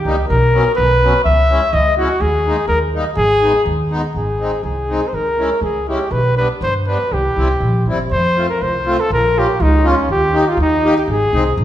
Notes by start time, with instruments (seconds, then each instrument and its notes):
0.02 upright bass C#2, flugelhorn G4
0.06 accordion G3 A#3 D#4
0.27 upright bass B1, flugelhorn A#4
0.53 accordion F#3 B3 C#4
0.75 upright bass B1, flugelhorn B4
1.03 accordion F#3 B3 C#4
1.24 upright bass C#2, flugelhorn E5
1.50 accordion G#3 C#4 E4
1.73 upright bass C#2, flugelhorn D#5
1.97 accordion G#3 C#4 E4, flugelhorn F#4
2.20 upright bass D#2, flugelhorn G#4
2.47 accordion G#3 A#3 D#4
2.68 upright bass D#2, flugelhorn A#4
2.95 accordion G3 A#3 D#4
3.17 upright bass G#1, flugelhorn G#4
3.42 accordion G#3 B3 D#4
3.66 upright bass D#2
3.91 accordion G#3 B3 D#4
4.15 upright bass G#1, flugelhorn G#4
4.40 accordion G#3 C4 D#4
4.63 upright bass C2, flugelhorn G#4
4.89 accordion G#3 C4 D#4
5.08 flugelhorn C5
5.13 upright bass C#2, flugelhorn A#4
5.38 accordion G#3 C#4 E4
5.61 upright bass C#2, flugelhorn G#4
5.87 accordion G#3 C#4 E4, flugelhorn G4
6.11 upright bass B1, flugelhorn B4
6.37 accordion G3 B3 D4, flugelhorn B4
6.61 upright bass G2, flugelhorn C5
6.87 accordion G3 B3 D4, flugelhorn B4
7.11 upright bass C2, flugelhorn G4
7.36 upright bass C2, accordion G3 C4 E4
7.60 upright bass A#1
7.86 upright bass G1, accordion G3 C4 E4
8.11 upright bass F2, flugelhorn C5
8.37 accordion A3 C4 F4
8.49 flugelhorn A#4
8.61 upright bass C2, flugelhorn C5
8.85 accordion A3 C4 F4
9.00 flugelhorn A4
9.10 upright bass A#1, flugelhorn A#4
9.37 accordion A#3 C#4 F4, flugelhorn G4
9.60 upright bass C#2, flugelhorn D#4
9.83 accordion A#3 C#4 F4
9.88 flugelhorn C#4
10.09 upright bass D#2, flugelhorn G4
10.33 accordion A#3 D#4 G4
10.48 flugelhorn F4
10.57 upright bass D#2
10.61 flugelhorn D#4
10.84 accordion A#3 D#4 G4
10.98 flugelhorn G4
11.08 upright bass G#1, flugelhorn G#4
11.33 upright bass C2, accordion C4 D#4 G#4
11.57 upright bass A#1